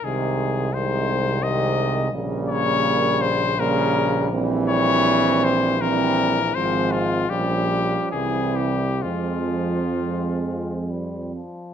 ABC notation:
X:1
M:3/4
L:1/8
Q:1/4=81
K:Fm
V:1 name="Cornet"
A2 c2 e2 | z d2 c B2 | z d2 c B2 | c F G2 A G |
F4 z2 |]
V:2 name="French horn section"
A,2 A,2 A,2 | B,4 B,2 | C4 C2 | C2 D2 C2 |
C4- C z |]
V:3 name="Euphonium" clef=bass
E,2 E,2 E,2 | G,4 G,2 | G,4 G,2 | A,2 G,2 G,2 |
A,2 A,2 G, F, |]
V:4 name="Trombone" clef=bass
C,2 C,2 C,2 | D,4 D,2 | =E,4 E,2 | F,2 F,2 =E,2 |
F,4- F, z |]
V:5 name="Tuba" clef=bass
C,,6 | B,,,6- | B,,,6 | A,,,2 B,,,2 C,,2 |
F,,4- F,, z |]